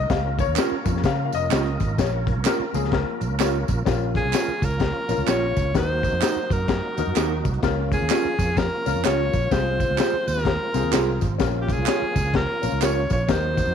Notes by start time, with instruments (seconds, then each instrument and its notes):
Already playing: tonewheel organ A#3 A#4, upright piano D#5
0.10 fingered electric bass C#2, tonewheel organ C#4 F4, upright piano F5, kick, snare, closed hi-hat, tambourine
0.39 upright piano C#5, kick, closed hi-hat, tambourine
0.48 fingered electric bass D#2
0.56 clean electric guitar C#4 F4 A#4, snare, clap, closed hi-hat, tambourine
0.72 muted fingered electric bass stroke
0.86 fingered electric bass F2, upright piano F3 A#3 C#4, kick, closed hi-hat, tambourine
0.97 snare
1.04 fingered electric bass C#3, upright piano F5, kick, snare, closed hi-hat, tambourine
1.25 upright piano F5
1.33 fingered electric bass F1, upright piano D#5, closed hi-hat, tambourine
1.50 fingered electric bass C#2, clean electric guitar C#4 F4 A#4, snare, clap, closed hi-hat, tambourine
1.66 closed hi-hat
1.80 fingered electric bass G#1, kick, closed hi-hat, tambourine
1.98 fingered electric bass A#1, upright piano C#5, kick, snare, closed hi-hat, tambourine
2.27 kick, closed hi-hat
2.36 fingered electric bass C2
2.45 clean electric guitar C#4 F4 A#4, upright piano A#4, snare, clap, closed hi-hat, tambourine
2.60 muted fingered electric bass stroke
2.73 fingered electric bass C#2, upright piano F3 A#3 C#4 G#4, closed hi-hat, tambourine
2.84 snare
2.92 upright piano A#4, kick, snare, closed hi-hat
3.21 fingered electric bass A#1, closed hi-hat, tambourine
3.30 fingered electric bass C#2
3.39 clean electric guitar C#4 F4 A#4, upright piano C#5, snare, clap, closed hi-hat, tambourine
3.68 fingered electric bass A#1, kick, closed hi-hat, tambourine
3.85 fingered electric bass A#1, tonewheel organ F3 A#3 C#4 F4, upright piano C#4 F4 A#4, kick, snare, closed hi-hat, tambourine
4.15 alto saxophone G#4, kick, closed hi-hat
4.24 fingered electric bass C2
4.33 clean electric guitar C#4 F4 A#4, snare, clap, closed hi-hat, tambourine
4.48 muted fingered electric bass stroke
4.62 fingered electric bass C#2, alto saxophone A#4, kick, closed hi-hat, tambourine
4.80 kick, snare, closed hi-hat, tambourine
5.09 fingered electric bass A#1, upright piano C#4 F4 A#4, closed hi-hat, tambourine
5.18 fingered electric bass C#2
5.26 fingered electric bass A#1, clean electric guitar C#4 F4 A#4, alto saxophone C#5, snare, clap, closed hi-hat, tambourine
5.57 fingered electric bass C#2, kick, closed hi-hat, tambourine
5.74 fingered electric bass D#2, tonewheel organ F#3 D#4 F#4, upright piano D#4 F#4 A#4, alto saxophone C5, kick, snare, closed hi-hat, tambourine
6.03 kick, closed hi-hat, tambourine
6.13 fingered electric bass F2
6.21 clean electric guitar D#4 F#4 A#4, snare, clap, closed hi-hat, tambourine
6.36 muted fingered electric bass stroke
6.50 fingered electric bass F#2, alto saxophone A#4, kick, closed hi-hat, tambourine
6.68 kick, snare, closed hi-hat, tambourine
6.97 fingered electric bass D#2, upright piano D#4 F#4 A#4, closed hi-hat, tambourine
7.07 fingered electric bass F#2
7.16 fingered electric bass D#2, clean electric guitar D#4 F#4 A#4, snare, clap, closed hi-hat, tambourine
7.45 fingered electric bass C2, kick, closed hi-hat, tambourine
7.53 closed hi-hat
7.61 fingered electric bass C#2, tonewheel organ F3 C#4 F4, upright piano C4 F4 A#4, kick, snare, closed hi-hat, tambourine
7.68 upright piano C#4
7.92 alto saxophone G#4, kick, closed hi-hat, tambourine
8.01 fingered electric bass D#2
8.10 clean electric guitar C#4 F4 A#4, snare, clap, closed hi-hat, tambourine
8.25 muted fingered electric bass stroke
8.39 fingered electric bass F2, kick, closed hi-hat, tambourine
8.57 alto saxophone A#4, kick, snare, closed hi-hat, tambourine
8.86 fingered electric bass C#2, upright piano C#4 F4 A#4, closed hi-hat, tambourine
8.95 fingered electric bass F2
9.04 fingered electric bass C#2, clean electric guitar C#4 F4 A#4, alto saxophone C#5, snare, clap, closed hi-hat, tambourine
9.33 fingered electric bass A#1, kick, closed hi-hat, tambourine
9.50 fingered electric bass C2, tonewheel organ F3 G#3 C4, upright piano C4 F4 G#4, alto saxophone C5, kick, snare, closed hi-hat, tambourine
9.80 kick, closed hi-hat, tambourine
9.90 fingered electric bass C#2
9.98 clean electric guitar F4 G#4 C5, snare, clap, closed hi-hat, tambourine
10.13 muted fingered electric bass stroke
10.28 fingered electric bass D#2, alto saxophone A#4, closed hi-hat, tambourine
10.37 snare
10.45 kick, snare, closed hi-hat
10.74 fingered electric bass C2, upright piano C4 F4 G#4, closed hi-hat, tambourine
10.83 fingered electric bass D#2
10.92 fingered electric bass C2, clean electric guitar F4 G#4 C5, snare, clap, closed hi-hat, tambourine
11.21 fingered electric bass G#1, kick, closed hi-hat, tambourine
11.38 fingered electric bass A#1, tonewheel organ A#3 C#4 F4, upright piano C#4 F4 A#4, kick, snare, closed hi-hat, tambourine
11.62 alto saxophone G4
11.69 alto saxophone G#4, kick, closed hi-hat, tambourine
11.78 fingered electric bass C2
11.86 clean electric guitar F4 A#4 C#5, snare, clap, closed hi-hat, tambourine
12.02 muted fingered electric bass stroke
12.16 fingered electric bass C#2, kick, closed hi-hat, tambourine
12.34 alto saxophone A#4, kick, snare, closed hi-hat
12.62 fingered electric bass A#1, upright piano C#4 F4 A#4, closed hi-hat, tambourine
12.72 fingered electric bass C#2
12.81 clean electric guitar F4 A#4 C#5, alto saxophone C#5, snare, clap, closed hi-hat, tambourine
13.10 fingered electric bass A#1, alto saxophone C#5, kick, closed hi-hat, tambourine
13.25 fingered electric bass D#2, tonewheel organ F#3 D#4 F#4, upright piano D#4 F#4, alto saxophone C#5, kick, closed hi-hat, tambourine
13.29 upright piano A#4, alto saxophone C5, snare
13.57 kick, closed hi-hat, tambourine
13.67 fingered electric bass F2